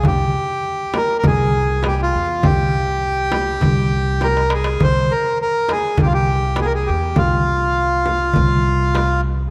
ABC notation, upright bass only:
X:1
M:4/4
L:1/8
Q:1/4=101
K:none
V:1 name="Upright bass" clef=bass
C,, z3 C,,3 E,, | C,,4 C,,4 | C,, z3 C,,3 E,, | C,,4 C,,4 |]